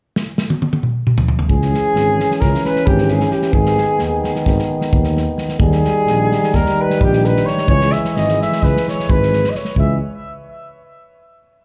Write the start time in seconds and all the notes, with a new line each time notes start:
0.16 snare
0.38 snare
0.50 high tom
0.62 high tom
0.73 high tom
0.83 mid tom
1.07 mid tom
1.18 floor tom
1.28 floor tom
1.39 floor tom
1.49 C#2 E3 C#4 G#4, kick
1.62 snare
1.74 snare
1.95 G#1, snare
2.20 snare
2.31 snare
2.41 C#2 A#4, kick, snare
2.54 snare
2.65 B4, snare
2.76 snare
2.87 G#1 G4, kick
2.98 snare
3.08 G#4, snare
3.20 snare
3.31 G4, snare
3.42 snare
3.52 G#1 D#3 B3 G#4, kick
3.66 snare
3.78 snare
3.99 D#2, snare
4.24 snare
4.36 snare
4.46 G#1, kick, snare
4.59 snare
4.81 snare
4.93 D#2, kick
5.04 snare
5.17 snare
5.38 snare
5.49 snare
5.59 D#2 D#3 G3 G#4, kick
5.72 snare
5.85 snare
6.07 A#1, snare
6.32 snare
6.44 snare
6.54 D#2 A#4, kick, snare
6.66 snare
6.81 B4
6.90 snare
7.01 A#1 G4, kick
7.13 snare
7.24 B4, snare
7.36 snare
7.46 C#5, snare
7.58 snare
7.68 C#2 E3 G#3 C#5, kick
7.81 snare
7.92 E5, snare
8.05 snare
8.16 G#1 D#5, snare
8.28 snare
8.42 E5, snare
8.52 snare
8.63 C#2 B4, kick, snare
8.77 snare
8.88 C#5, snare
9.00 snare
9.09 G#1 B4, kick
9.23 snare
9.33 snare
9.44 snare
9.50 D#5
9.55 C#5, snare
9.65 snare
9.76 C#2 E3 G#3 E5, kick